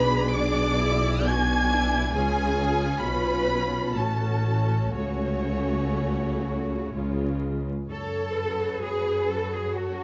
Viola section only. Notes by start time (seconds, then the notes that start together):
Already playing: D4 G#4
0.33 D4
0.79 E4
1.27 D4 F#4
1.71 E4
2.16 C#4 F4
3.96 C#4 F#4
4.94 A3 F#4
6.93 G#3 F4
8.37 F#3 F#4
9.29 F#3 F#4